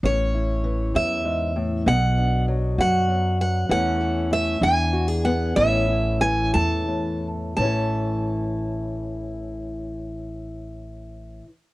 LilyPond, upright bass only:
\new Staff \with { instrumentName = "Upright bass" } { \clef bass \time 6/8 \key a \major \tempo 4. = 63 a,,4. e,4. | b,,4. fis,4. | e,4. e,4. | a,,4. e,4. |
a,,2.~ | a,,2. | }